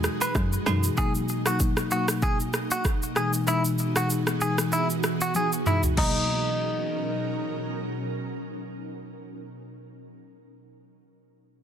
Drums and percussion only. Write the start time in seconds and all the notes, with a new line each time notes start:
0.04 cross-stick, shaker
0.21 high agogo, shaker
0.35 kick, cross-stick, shaker
0.53 shaker
0.66 cross-stick, high agogo, shaker
0.83 shaker
0.98 kick, shaker
1.15 shaker
1.28 shaker
1.46 cross-stick, shaker
1.60 kick, shaker
1.77 cross-stick, shaker
1.91 shaker
2.08 cross-stick, shaker
2.22 kick, shaker
2.40 shaker
2.53 cross-stick, shaker
2.71 shaker
2.85 kick, cross-stick, shaker
3.03 shaker
3.16 cross-stick, shaker
3.33 shaker
3.47 shaker
3.65 shaker
3.78 shaker
3.96 cross-stick, shaker
4.10 shaker
4.27 cross-stick, shaker
4.41 shaker
4.58 cross-stick, shaker
4.72 shaker
4.90 shaker
5.03 cross-stick, shaker
5.21 shaker
5.35 high tom, shaker
5.52 shaker
5.66 mid tom, shaker
5.83 floor tom, shaker
5.97 kick, crash